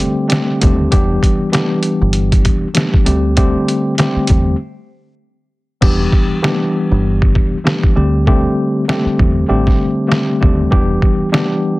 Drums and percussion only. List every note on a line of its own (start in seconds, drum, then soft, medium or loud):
0.00 closed hi-hat medium
0.30 snare loud
0.30 closed hi-hat loud
0.62 kick loud
0.62 closed hi-hat medium
0.92 kick loud
0.92 closed hi-hat medium
1.23 kick medium
1.23 closed hi-hat medium
1.53 snare loud
1.53 closed hi-hat medium
1.83 closed hi-hat medium
2.13 closed hi-hat medium
2.32 kick medium
2.32 closed hi-hat medium
2.45 kick medium
2.45 closed hi-hat medium
2.75 snare loud
2.75 closed hi-hat loud
2.94 kick loud
3.06 closed hi-hat medium
3.37 kick loud
3.37 closed hi-hat medium
3.68 closed hi-hat medium
3.98 snare loud
3.98 closed hi-hat medium
4.27 kick medium
4.27 closed hi-hat medium
5.82 kick loud
5.82 crash medium
6.12 kick medium
6.44 snare loud
7.22 kick medium
7.35 kick medium
7.67 snare loud
7.83 kick loud
8.27 kick loud
8.89 snare loud
9.19 kick loud
9.67 kick medium
9.67 snare soft
10.12 snare loud
10.43 kick loud
10.72 kick loud
11.02 kick medium
11.34 snare loud